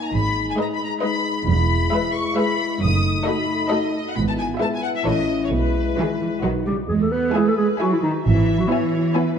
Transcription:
Already playing: french horn section A#3 D#4
0.05 violin section A#5
0.14 double bass section G#1, cello section G#2, french horn section G#3, violin section B5
0.49 violin section G#5
0.58 viola section G#3 D#4, violin section B4 D#5 A#5
0.74 violin section B5
0.83 violin section A#5
1.03 viola section G#3 D#4, violin section B4 D#5 B5
1.48 double bass section E1, cello section E2, french horn section E4, violin section B5
1.93 viola section G#3 G#4, violin section B4 E5
2.14 violin section C#6
2.35 viola section G#3 G#4, violin section B4 E5 B5
2.81 double bass section F#1, cello section F#2, french horn section A3 D#4, violin section D#6
3.25 viola section A3 F#4, violin section A4 D#5 B5
3.70 viola section A3 F#4, violin section A4 D#5
4.08 violin section F#5
4.16 double bass section G#1, cello section G#2, french horn section B3 E4, violin section B5
4.28 violin section A5
4.39 violin section G#5
4.60 viola section G#3 E4, violin section B4 E5 A5
4.74 violin section G#5
4.83 violin section F#5
4.96 violin section E5
5.05 double bass section A1, cello section A2, viola section E3 E4, french horn section C#4, violin section A4 C#5 D#5
5.44 violin section C#5
5.51 double bass section B1, cello section B2, french horn section G#3, violin section B4
5.97 cello section D#3, viola section E3 E4, violin section G#4 B4
6.20 cello section E3
6.43 double bass section B1, cello section D#3, french horn section F#3 D#4, viola section F#3 D#4, violin section F#4 B4
6.66 cello section C#3 G3, clarinet G4
6.89 double bass section E2, cello section G#3, clarinet G#4
7.00 cello section A3, clarinet A4
7.11 cello section B3, clarinet B4
7.35 viola section G#3 E4, cello section G#3, clarinet G#4, violin section B4 E5 G#5
7.46 cello section A3, clarinet A4
7.57 cello section G#3, clarinet G#4
7.79 cello section F#3, viola section G#3 E4, clarinet F#4, violin section E5 G#5
7.91 cello section E3, clarinet E4
8.02 cello section D#3, clarinet D#4
8.24 double bass section G#1, cello section E3, clarinet E4, violin section E5
8.58 cello section F#3, clarinet F#4
8.69 cello section E3, viola section B3 E4, clarinet E4, violin section C#5 E5 G#5
9.14 viola section B3 E4, violin section B4 E5 G#5

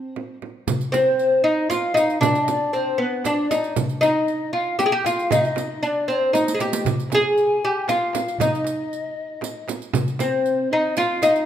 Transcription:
Already playing: oud C4
0.16 frame drum
0.42 frame drum
0.67 riq, darbuka dum, frame drum
0.81 riq
0.92 oud C4, pan flute C5, riq, darbuka tek, frame drum
1.19 riq
1.44 oud D#4, pan flute D#5
1.69 oud F4, pan flute F5, riq, darbuka tek, frame drum
1.94 oud D#4, riq, darbuka tek, frame drum
2.09 riq, darbuka ka
2.20 oud D4, pan flute D5, riq, darbuka dum, frame drum
2.35 riq
2.42 pan flute D#5
2.48 pan flute D5, riq, frame drum
2.73 oud C4, pan flute C5, riq
2.98 oud B3, pan flute B4, darbuka ka
3.24 oud D4, pan flute D5, riq, darbuka tek, frame drum
3.51 oud D#4, riq, darbuka tek, frame drum
3.64 riq, darbuka ka
3.76 riq, frame drum, darbuka dum
3.89 riq
4.01 oud D#4, pan flute D#5, riq, darbuka tek, frame drum
4.28 riq
4.53 oud F4, pan flute F5
4.79 oud G4, pan flute G5, riq, darbuka tek, frame drum
4.86 oud G#4
4.92 oud G4
5.05 oud F4, pan flute F5, riq, darbuka tek, frame drum
5.18 riq, darbuka ka
5.31 oud D#4, pan flute D#5, riq, frame drum, darbuka dum
5.45 riq
5.56 riq, darbuka tek, frame drum
5.83 oud D4, pan flute D5, riq
6.08 oud C4, pan flute C5, riq
6.33 oud D#4, pan flute D#5, riq, darbuka tek, frame drum
6.46 riq, darbuka ka
6.54 oud G#4
6.59 oud G4, riq, darbuka tek, frame drum
6.73 riq, darbuka ka
6.85 riq, darbuka dum, frame drum
7.00 riq
7.10 pan flute G#5, riq, darbuka tek, frame drum
7.15 oud G#4
7.38 riq
7.62 oud G4, darbuka ka
7.87 oud F4, pan flute F5, riq, darbuka tek, frame drum
8.13 pan flute F5, riq, darbuka tek, frame drum
8.26 riq, darbuka ka
8.38 oud D#4, pan flute D#5, riq, darbuka dum, frame drum
8.55 riq
8.64 riq, darbuka tek
8.93 riq
9.16 darbuka ka
9.41 riq, darbuka tek, frame drum
9.68 riq, darbuka tek, frame drum
9.81 riq, darbuka ka
9.93 riq, frame drum, darbuka dum
10.08 riq
10.19 oud C4, pan flute C5, riq, darbuka tek, frame drum
10.46 riq
10.71 oud D#4, pan flute D#5, darbuka ka
10.96 oud F4, pan flute F5, riq, darbuka tek, frame drum
11.22 oud D#4, riq, darbuka tek, frame drum
11.36 riq

